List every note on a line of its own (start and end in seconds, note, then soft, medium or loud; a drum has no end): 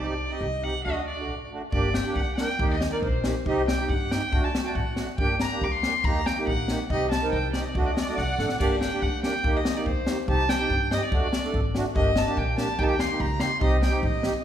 0.00 0.23 C2 medium
0.00 0.13 C4 medium
0.00 0.14 D#4 medium
0.00 0.14 G4 medium
0.00 0.33 D5 medium
0.29 0.46 C4 medium
0.29 0.47 D#4 soft
0.29 0.47 G4 medium
0.29 0.65 D#5 medium
0.41 0.67 C2 medium
0.63 0.74 C4 medium
0.63 0.74 D#4 soft
0.63 0.75 G4 medium
0.63 0.84 F#5 loud
0.84 1.29 D2 medium
0.84 1.01 A3 medium
0.84 1.01 D4 medium
0.84 1.02 F#4 medium
0.84 1.05 D#5 medium
1.08 1.48 D5 medium
1.19 1.35 A3 medium
1.19 1.35 D4 medium
1.19 1.35 F#4 medium
1.29 1.55 A1 medium
1.52 1.62 A3 soft
1.52 1.62 D4 soft
1.52 1.62 F#4 medium
1.71 1.99 G1 medium
1.71 1.89 A#3 medium
1.71 1.89 D4 medium
1.71 1.89 G4 medium
1.71 1.95 D5 medium
1.71 kick medium
1.94 2.15 G5 medium
1.94 snare medium
2.05 2.21 A#3 medium
2.05 2.22 D4 medium
2.05 2.22 G4 medium
2.15 2.41 D2 medium
2.15 2.35 F#5 medium
2.15 kick medium
2.36 2.49 A#3 medium
2.36 2.49 D4 soft
2.36 2.49 A#4 medium
2.36 2.67 G5 loud
2.36 snare medium
2.50 snare soft
2.59 2.85 D#2 medium
2.59 2.75 A#3 medium
2.59 2.76 D#4 medium
2.59 2.76 G4 medium
2.59 kick medium
2.70 2.90 D#5 medium
2.81 snare medium
2.91 3.08 A#3 medium
2.91 3.08 D#4 medium
2.91 3.08 A#4 medium
2.91 3.02 D5 medium
3.02 3.28 A#1 medium
3.02 3.32 C5 medium
3.02 kick medium
3.24 3.35 A#3 medium
3.24 3.35 D#4 medium
3.24 3.35 G4 medium
3.24 snare medium
3.46 3.72 C2 medium
3.46 3.62 C4 medium
3.46 3.62 D#4 medium
3.46 3.62 G4 medium
3.46 3.66 D#5 medium
3.46 kick medium
3.68 3.88 G5 loud
3.68 snare medium
3.78 3.94 C4 medium
3.78 3.94 D#4 soft
3.78 3.95 G4 medium
3.89 4.15 G2 medium
3.89 4.13 F#5 medium
3.89 kick medium
4.11 4.22 C4 soft
4.11 4.22 D#4 soft
4.11 4.22 G4 medium
4.11 4.45 G5 loud
4.11 snare medium
4.32 4.58 D2 medium
4.32 4.48 A3 medium
4.32 4.48 D4 medium
4.32 4.49 F#4 medium
4.32 kick medium
4.44 4.65 A5 medium
4.55 snare medium
4.63 4.80 A3 soft
4.63 4.80 D4 medium
4.63 4.80 F#4 medium
4.63 4.69 G5 medium
4.63 4.67 A5 medium
4.69 4.76 G5 medium
4.75 5.01 A1 medium
4.75 5.07 F#5 medium
4.75 kick medium
4.96 5.08 A3 soft
4.96 5.08 D4 soft
4.96 5.08 F#4 medium
4.96 snare medium
5.18 5.44 G1 medium
5.18 5.34 A#3 medium
5.18 5.35 D4 medium
5.18 5.35 G4 medium
5.18 5.38 G5 loud
5.18 kick medium
5.40 5.65 A#5 loud
5.40 snare medium
5.51 5.67 A#3 medium
5.51 5.66 D4 medium
5.51 5.67 G4 medium
5.61 5.87 D2 medium
5.61 5.73 D6 medium
5.61 kick medium
5.71 6.06 C6 loud
5.83 5.94 A#3 medium
5.83 5.94 D4 soft
5.83 5.94 G4 medium
5.83 snare medium
6.04 6.30 D#2 medium
6.04 6.21 A#3 medium
6.04 6.21 D#4 medium
6.04 6.21 G4 medium
6.04 6.27 A#5 loud
6.04 kick loud
6.26 6.47 G5 loud
6.26 snare medium
6.38 6.53 A#3 medium
6.38 6.53 D#4 medium
6.38 6.53 G4 medium
6.47 6.72 A#1 medium
6.47 6.77 F#5 loud
6.47 kick medium
6.68 6.79 A#3 medium
6.68 6.79 D#4 soft
6.68 6.79 G4 medium
6.68 snare medium
6.90 7.16 C2 medium
6.90 7.06 C4 medium
6.90 7.06 D#4 medium
6.90 7.07 G4 medium
6.90 7.10 D#5 loud
6.90 kick medium
7.11 7.31 A5 medium
7.11 snare medium
7.22 7.37 C4 medium
7.22 7.38 D#4 medium
7.22 7.38 A#4 medium
7.32 7.58 C2 medium
7.32 7.52 G5 medium
7.32 kick medium
7.53 7.64 C4 medium
7.53 7.64 D#4 medium
7.53 7.64 G4 medium
7.53 7.63 D5 medium
7.53 snare medium
7.61 7.70 D#5 medium
7.68 7.79 D5 medium
7.75 8.00 D2 medium
7.75 7.91 A3 medium
7.75 7.91 D4 medium
7.75 7.92 F#4 medium
7.75 7.87 D#5 medium
7.75 kick medium
7.86 7.94 D5 medium
7.93 8.02 D#5 medium
7.93 snare medium
7.97 8.18 D5 medium
7.97 8.09 D5 medium
8.08 8.23 A3 medium
8.08 8.23 D4 soft
8.08 8.24 F#4 medium
8.08 8.17 D#5 medium
8.08 snare soft
8.15 8.36 C2 medium
8.15 8.39 D5 medium
8.15 8.56 F#5 loud
8.15 kick medium
8.15 snare soft
8.38 8.57 A1 medium
8.38 8.49 A3 soft
8.38 8.49 D4 soft
8.38 8.50 A4 medium
8.38 snare medium
8.49 snare medium
8.59 8.86 G1 medium
8.59 8.75 A#3 medium
8.59 8.76 D4 medium
8.59 8.76 G4 medium
8.59 8.79 D5 medium
8.59 kick medium
8.59 crash medium
8.81 9.04 G5 medium
8.81 snare medium
8.91 9.07 A#3 medium
8.91 9.08 D4 medium
8.91 9.08 G4 medium
9.02 9.28 D2 medium
9.02 9.23 F#5 medium
9.02 kick medium
9.23 9.33 A#3 medium
9.23 9.34 D4 soft
9.23 9.34 G4 medium
9.23 9.58 G5 loud
9.23 snare medium
9.43 9.69 D#2 medium
9.43 9.60 A#3 medium
9.43 9.60 D#4 medium
9.43 9.60 G4 medium
9.43 kick medium
9.56 9.78 D#5 medium
9.65 snare loud
9.75 9.91 A#3 medium
9.75 9.92 D#4 medium
9.75 9.92 G4 medium
9.75 9.88 D5 medium
9.86 10.11 D2 medium
9.86 10.18 C5 medium
9.86 kick medium
10.07 10.18 A#3 medium
10.07 10.18 D#4 soft
10.07 10.18 G4 medium
10.07 snare medium
10.28 10.53 C2 medium
10.28 10.44 C4 medium
10.28 10.44 D#4 medium
10.28 10.44 G4 medium
10.28 10.51 A5 loud
10.28 kick medium
10.49 10.91 G5 loud
10.49 snare loud
10.58 10.74 C4 medium
10.58 10.75 D#4 soft
10.58 10.75 G4 medium
10.70 10.95 G2 medium
10.70 kick medium
10.91 11.02 C4 medium
10.91 11.01 D#4 medium
10.91 11.02 G4 medium
10.91 11.02 D#5 loud
10.91 snare medium
11.05 11.72 D5 medium
11.12 11.37 D2 medium
11.12 11.28 A3 medium
11.12 11.28 D4 medium
11.12 11.28 F#4 medium
11.12 kick medium
11.33 snare medium
11.44 11.59 A3 medium
11.44 11.60 D4 medium
11.44 11.60 A4 medium
11.44 snare soft
11.54 11.79 G#1 medium
11.54 kick medium
11.75 11.85 A3 medium
11.75 11.86 D4 medium
11.75 11.86 F#4 medium
11.75 snare medium
11.95 12.21 G1 medium
11.95 12.11 A#3 medium
11.95 12.11 D4 medium
11.95 12.11 G4 medium
11.95 12.19 D#5 loud
11.95 kick medium
12.16 12.40 A5 medium
12.16 snare medium
12.27 12.42 A#3 medium
12.27 12.42 D4 soft
12.27 12.43 G4 medium
12.37 12.62 A#1 medium
12.37 12.58 G5 medium
12.37 kick medium
12.57 12.68 A#3 medium
12.57 12.68 D4 medium
12.57 12.68 G4 medium
12.57 12.80 A5 loud
12.57 snare medium
12.78 13.03 D#2 medium
12.78 12.94 A#3 medium
12.78 12.95 D#4 medium
12.78 12.95 G4 medium
12.78 12.85 G5 loud
12.78 kick medium
12.83 12.90 A5 medium
12.89 13.01 G5 loud
12.99 13.22 C6 medium
12.99 snare medium
13.10 13.26 A#3 medium
13.10 13.26 D#4 medium
13.10 13.26 G4 medium
13.20 13.45 C#2 medium
13.20 13.41 A#5 loud
13.20 kick medium
13.40 13.51 A#3 soft
13.40 13.51 D#4 medium
13.40 13.51 G4 medium
13.40 13.61 C6 loud
13.40 snare medium
13.61 13.86 C2 medium
13.61 13.77 C4 medium
13.61 13.77 D#4 medium
13.61 13.77 G4 medium
13.61 13.81 D#5 loud
13.61 kick loud
13.82 14.02 G5 medium
13.82 snare medium
13.90 14.07 C4 medium
13.90 14.07 D#4 medium
13.90 14.07 G4 medium
14.03 14.27 A1 medium
14.03 14.42 D#5 medium
14.03 kick medium
14.22 14.33 C4 medium
14.22 14.33 D#4 medium
14.22 14.34 G4 medium
14.22 snare medium